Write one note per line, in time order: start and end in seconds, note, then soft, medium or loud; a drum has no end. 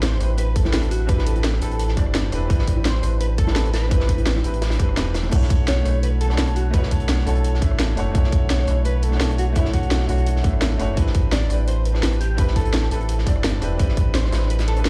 0.00 0.19 A1 loud
0.00 0.16 C4 medium
0.00 0.17 D4 medium
0.00 0.19 E4 medium
0.00 0.19 G4 medium
0.00 0.20 B4 loud
0.00 0.38 C5 loud
0.00 snare loud
0.00 closed hi-hat medium
0.12 cross-stick soft
0.12 snare soft
0.17 0.72 A1 loud
0.17 0.60 C4 medium
0.17 0.62 D4 medium
0.17 0.63 E4 medium
0.17 cross-stick soft
0.17 closed hi-hat medium
0.17 open hi-hat medium
0.22 0.64 G4 medium
0.22 0.65 B4 medium
0.38 0.56 B4 loud
0.38 closed hi-hat medium
0.56 0.92 A4 loud
0.56 kick loud
0.56 closed hi-hat medium
0.62 1.04 C4 medium
0.62 1.06 D4 medium
0.62 1.07 E4 medium
0.62 cross-stick soft
0.62 snare medium
0.62 high bongo medium
0.67 1.08 G4 medium
0.67 1.08 B4 medium
0.73 1.61 A1 medium
0.73 snare loud
0.73 closed hi-hat medium
0.83 cross-stick soft
0.83 closed hi-hat soft
0.91 1.09 F#4 medium
0.91 closed hi-hat medium
0.91 open hi-hat medium
1.05 1.58 C4 loud
1.05 1.59 D4 medium
1.05 1.60 E4 loud
1.05 1.27 B4 loud
1.05 kick loud
1.05 closed hi-hat medium
1.10 1.61 G4 medium
1.10 1.61 B4 loud
1.18 snare medium
1.26 1.61 A4 loud
1.26 closed hi-hat medium
1.26 closed hi-hat loud
1.35 closed hi-hat soft
1.35 high bongo soft
1.44 snare loud
1.44 closed hi-hat medium
1.53 cross-stick soft
1.53 snare soft
1.60 1.96 A1 loud
1.60 1.94 C4 medium
1.60 1.95 D4 medium
1.60 1.95 E4 medium
1.60 1.96 G4 medium
1.60 1.95 A4 medium
1.60 1.96 B4 medium
1.60 closed hi-hat medium
1.60 open hi-hat medium
1.71 closed hi-hat soft
1.79 closed hi-hat medium
1.88 snare soft
1.95 2.31 G1 loud
1.95 2.29 C4 medium
1.95 2.30 D4 medium
1.95 2.30 E4 medium
1.95 2.31 G4 medium
1.95 2.31 D5 loud
1.95 kick loud
1.95 closed hi-hat medium
2.06 cross-stick soft
2.15 snare loud
2.15 closed hi-hat medium
2.31 2.48 E1 medium
2.31 2.45 C4 loud
2.31 2.47 D4 medium
2.31 2.48 E4 medium
2.31 2.48 G4 medium
2.31 2.49 B4 loud
2.31 cross-stick soft
2.31 closed hi-hat medium
2.31 open hi-hat medium
2.47 3.02 A1 loud
2.47 2.98 C4 loud
2.47 3.00 D4 medium
2.47 3.01 E4 medium
2.47 kick loud
2.47 closed hi-hat medium
2.52 3.02 G4 medium
2.52 3.03 B4 loud
2.59 snare medium
2.67 kick medium
2.67 closed hi-hat loud
2.67 closed hi-hat medium
2.76 high bongo soft
2.85 3.20 C5 loud
2.85 snare loud
2.85 closed hi-hat medium
2.95 cross-stick soft
2.95 snare soft
3.00 3.55 A1 loud
3.00 3.43 C4 medium
3.00 3.44 D4 medium
3.00 3.45 E4 medium
3.00 cross-stick soft
3.00 closed hi-hat medium
3.00 open hi-hat medium
3.05 3.46 G4 medium
3.05 3.47 B4 medium
3.21 3.26 B4 loud
3.21 closed hi-hat medium
3.38 3.73 A4 loud
3.38 kick loud
3.38 closed hi-hat medium
3.44 3.86 C4 medium
3.44 3.88 D4 medium
3.44 3.89 E4 medium
3.44 cross-stick soft
3.44 snare medium
3.44 high bongo medium
3.49 3.90 G4 medium
3.49 3.91 B4 medium
3.56 4.43 A1 medium
3.56 snare loud
3.56 closed hi-hat medium
3.65 cross-stick soft
3.65 closed hi-hat soft
3.73 5.11 B4 medium
3.73 snare medium
3.73 closed hi-hat medium
3.73 open hi-hat medium
3.83 snare soft
3.88 4.41 C4 loud
3.88 4.41 D4 loud
3.88 4.42 E4 medium
3.88 kick loud
3.88 closed hi-hat medium
3.93 4.43 G4 medium
3.93 4.44 B4 loud
4.00 snare medium
4.09 kick medium
4.09 closed hi-hat loud
4.09 closed hi-hat medium
4.18 closed hi-hat soft
4.18 high bongo soft
4.26 snare loud
4.26 closed hi-hat medium
4.36 cross-stick soft
4.36 snare soft
4.36 high bongo medium
4.43 4.78 A1 loud
4.43 4.75 C4 medium
4.43 4.76 D4 medium
4.43 4.78 E4 medium
4.43 4.78 G4 medium
4.43 4.79 B4 medium
4.43 closed hi-hat medium
4.43 open hi-hat medium
4.54 closed hi-hat soft
4.62 snare loud
4.62 closed hi-hat medium
4.70 snare loud
4.70 closed hi-hat medium
4.76 4.97 G1 loud
4.76 5.29 C4 loud
4.76 5.29 D4 medium
4.76 5.30 E4 medium
4.76 kick loud
4.76 closed hi-hat medium
4.76 closed hi-hat loud
4.81 5.31 G4 medium
4.81 5.32 B4 loud
4.89 cross-stick soft
4.97 5.31 E1 medium
4.97 snare loud
4.97 closed hi-hat medium
5.14 cross-stick soft
5.14 snare loud
5.14 closed hi-hat medium
5.14 open hi-hat medium
5.23 snare soft
5.23 high bongo medium
5.29 5.84 B1 loud
5.29 5.81 A3 medium
5.29 5.82 D4 medium
5.29 5.83 E4 medium
5.29 kick loud
5.29 closed hi-hat medium
5.29 crash loud
5.34 5.84 F#4 medium
5.34 5.85 C#5 loud
5.42 snare soft
5.50 kick loud
5.50 closed hi-hat medium
5.50 closed hi-hat loud
5.68 6.03 C#5 loud
5.68 snare loud
5.68 closed hi-hat medium
5.76 cross-stick soft
5.76 snare soft
5.82 6.37 B1 loud
5.82 6.25 A3 medium
5.82 6.27 D4 medium
5.82 6.28 E4 medium
5.82 cross-stick medium
5.82 closed hi-hat medium
5.82 open hi-hat medium
5.87 6.29 F#4 medium
5.87 6.29 C#5 medium
6.03 6.08 B4 loud
6.03 closed hi-hat medium
6.21 6.57 A4 loud
6.21 closed hi-hat medium
6.27 6.69 A3 medium
6.27 6.71 D4 medium
6.27 6.72 E4 medium
6.27 cross-stick soft
6.27 snare soft
6.32 6.72 F#4 medium
6.32 6.73 C#5 medium
6.38 7.25 B1 medium
6.38 snare loud
6.38 closed hi-hat medium
6.47 cross-stick soft
6.47 closed hi-hat soft
6.56 6.74 F#4 medium
6.56 closed hi-hat medium
6.56 open hi-hat medium
6.70 7.23 A3 loud
6.70 7.24 D4 medium
6.70 7.25 E4 medium
6.70 6.92 B4 loud
6.70 kick loud
6.70 closed hi-hat medium
6.75 7.25 F#4 medium
6.75 7.26 C#5 loud
6.83 snare medium
6.91 7.25 A4 loud
6.91 kick medium
6.91 closed hi-hat medium
7.00 closed hi-hat soft
7.08 snare loud
7.08 closed hi-hat medium
7.18 cross-stick soft
7.18 snare soft
7.25 7.61 B1 loud
7.25 7.59 A3 medium
7.25 7.60 D4 medium
7.25 7.60 E4 medium
7.25 7.61 F#4 medium
7.25 7.59 A4 medium
7.25 7.61 C#5 medium
7.25 closed hi-hat medium
7.25 open hi-hat medium
7.35 closed hi-hat soft
7.44 closed hi-hat medium
7.54 snare medium
7.60 7.96 A1 loud
7.60 7.94 A3 medium
7.60 7.95 D4 medium
7.60 7.95 E4 medium
7.60 7.96 F#4 medium
7.60 7.96 E5 medium
7.60 kick loud
7.60 closed hi-hat medium
7.71 cross-stick soft
7.79 snare loud
7.79 closed hi-hat medium
7.96 8.13 F#1 loud
7.96 8.10 A3 medium
7.96 8.12 D4 medium
7.96 8.13 E4 medium
7.96 8.13 F#4 medium
7.96 8.14 C#5 loud
7.96 cross-stick soft
7.96 closed hi-hat medium
7.96 open hi-hat medium
8.12 8.66 B1 loud
8.12 8.63 A3 medium
8.12 8.65 D4 medium
8.12 8.66 E4 medium
8.12 kick loud
8.12 closed hi-hat medium
8.16 8.67 F#4 medium
8.16 8.67 C#5 loud
8.24 snare soft
8.32 kick loud
8.32 closed hi-hat medium
8.50 8.83 C#5 loud
8.50 snare loud
8.50 closed hi-hat medium
8.59 cross-stick soft
8.59 snare soft
8.64 9.19 B1 loud
8.64 9.07 A3 medium
8.64 9.09 D4 medium
8.64 9.10 E4 medium
8.64 cross-stick medium
8.64 closed hi-hat medium
8.64 open hi-hat medium
8.69 9.11 F#4 medium
8.69 9.12 C#5 medium
8.85 9.03 B4 loud
8.85 closed hi-hat medium
9.02 9.38 A4 loud
9.02 closed hi-hat medium
9.09 9.51 A3 medium
9.09 9.53 D4 medium
9.09 9.54 E4 medium
9.09 cross-stick soft
9.09 snare soft
9.14 9.55 F#4 medium
9.14 9.56 C#5 medium
9.21 10.08 B1 medium
9.21 snare loud
9.21 closed hi-hat medium
9.30 cross-stick soft
9.30 closed hi-hat soft
9.38 9.44 F#4 loud
9.38 closed hi-hat medium
9.38 open hi-hat medium
9.53 10.05 A3 loud
9.53 10.06 D4 medium
9.53 10.07 E4 medium
9.53 9.74 E4 medium
9.53 kick loud
9.53 closed hi-hat loud
9.53 closed hi-hat medium
9.57 10.08 F#4 medium
9.57 10.08 C#5 loud
9.65 snare medium
9.74 10.08 F#4 loud
9.74 kick medium
9.74 closed hi-hat medium
9.83 closed hi-hat soft
9.91 snare loud
9.91 closed hi-hat medium
10.00 cross-stick soft
10.00 snare soft
10.07 10.43 B1 loud
10.07 10.41 A3 medium
10.07 10.42 D4 medium
10.07 10.42 E4 medium
10.07 10.42 F#4 medium
10.07 10.43 F#4 medium
10.07 10.43 C#5 medium
10.07 closed hi-hat medium
10.07 open hi-hat medium
10.18 closed hi-hat soft
10.26 closed hi-hat medium
10.36 snare soft
10.42 10.78 A1 loud
10.42 10.76 A3 medium
10.42 10.77 D4 medium
10.42 10.77 E4 medium
10.42 10.78 F#4 medium
10.42 10.78 E5 medium
10.42 kick loud
10.42 closed hi-hat medium
10.53 cross-stick soft
10.61 snare loud
10.61 closed hi-hat medium
10.78 10.95 F#1 loud
10.78 10.94 A3 loud
10.78 10.94 D4 medium
10.78 10.95 E4 medium
10.78 10.95 F#4 medium
10.78 10.96 C#5 loud
10.78 cross-stick soft
10.78 closed hi-hat medium
10.78 open hi-hat medium
10.94 11.49 A1 loud
10.94 11.45 C4 loud
10.94 11.47 D4 medium
10.94 11.48 E4 medium
10.94 kick loud
10.94 closed hi-hat loud
10.94 closed hi-hat medium
10.99 11.49 G4 medium
10.99 11.50 B4 loud
11.07 snare medium
11.15 kick loud
11.15 closed hi-hat medium
11.32 11.67 D5 loud
11.32 snare loud
11.32 closed hi-hat medium
11.41 cross-stick soft
11.41 snare soft
11.47 12.02 A1 loud
11.47 11.90 C4 medium
11.47 11.91 D4 medium
11.47 11.92 E4 medium
11.47 cross-stick soft
11.47 closed hi-hat medium
11.47 open hi-hat medium
11.52 11.93 G4 medium
11.52 11.94 B4 medium
11.68 11.85 C5 loud
11.68 closed hi-hat medium
11.85 12.21 B4 loud
11.85 closed hi-hat medium
11.91 12.34 C4 medium
11.91 12.35 D4 medium
11.91 12.36 E4 medium
11.91 cross-stick soft
11.91 snare medium
11.96 12.37 G4 medium
11.96 12.38 B4 medium
12.03 12.90 A1 medium
12.03 snare loud
12.03 closed hi-hat medium
12.03 closed hi-hat loud
12.12 cross-stick soft
12.12 closed hi-hat soft
12.21 12.39 G4 medium
12.21 closed hi-hat medium
12.21 open hi-hat medium
12.35 12.88 C4 loud
12.35 12.88 D4 medium
12.35 12.89 E4 loud
12.35 12.43 B4 loud
12.35 kick loud
12.35 closed hi-hat medium
12.40 12.90 G4 loud
12.40 12.91 B4 loud
12.48 snare medium
12.56 12.91 A4 loud
12.56 kick medium
12.56 closed hi-hat medium
12.65 closed hi-hat soft
12.74 snare loud
12.74 closed hi-hat medium
12.83 cross-stick soft
12.83 snare soft
12.90 13.25 A1 loud
12.90 13.23 C4 medium
12.90 13.24 D4 medium
12.90 13.25 E4 medium
12.90 13.25 G4 medium
12.90 13.24 A4 medium
12.90 13.26 B4 medium
12.90 closed hi-hat medium
12.90 open hi-hat medium
13.01 closed hi-hat soft
13.09 closed hi-hat medium
13.19 snare medium
13.25 13.60 G1 loud
13.25 13.59 C4 medium
13.25 13.59 D4 medium
13.25 13.60 E4 medium
13.25 13.60 G4 medium
13.25 13.61 D5 loud
13.25 kick loud
13.25 closed hi-hat loud
13.25 closed hi-hat medium
13.36 cross-stick soft
13.44 snare loud
13.44 closed hi-hat medium
13.60 13.78 E1 medium
13.60 13.75 C4 loud
13.60 13.76 D4 medium
13.60 13.77 E4 medium
13.60 13.78 G4 medium
13.60 13.78 B4 loud
13.60 cross-stick soft
13.60 closed hi-hat medium
13.60 open hi-hat medium
13.76 14.31 A1 loud
13.76 14.28 C4 loud
13.76 14.29 D4 medium
13.76 14.30 E4 medium
13.76 kick loud
13.76 closed hi-hat medium
13.81 14.31 G4 medium
13.81 14.32 B4 loud
13.89 snare soft
13.97 kick loud
13.97 closed hi-hat medium
14.14 14.50 C5 loud
14.14 snare loud
14.14 closed hi-hat medium
14.24 cross-stick soft
14.24 snare soft
14.29 14.84 A1 loud
14.29 14.72 C4 medium
14.29 14.74 D4 medium
14.29 14.75 E4 medium
14.29 cross-stick medium
14.29 snare medium
14.29 open hi-hat medium
14.33 14.76 G4 medium
14.33 14.76 B4 medium
14.33 closed hi-hat medium
14.42 snare soft
14.50 14.56 B4 loud
14.50 closed hi-hat medium
14.59 snare loud
14.59 closed hi-hat medium
14.68 14.89 A4 loud
14.68 snare soft
14.68 closed hi-hat loud
14.74 14.89 C4 medium
14.74 14.89 D4 medium
14.74 14.89 E4 medium
14.74 cross-stick soft
14.74 closed hi-hat medium
14.79 14.89 G4 medium
14.79 14.89 B4 medium
14.85 14.89 A1 medium
14.85 snare loud
14.85 closed hi-hat medium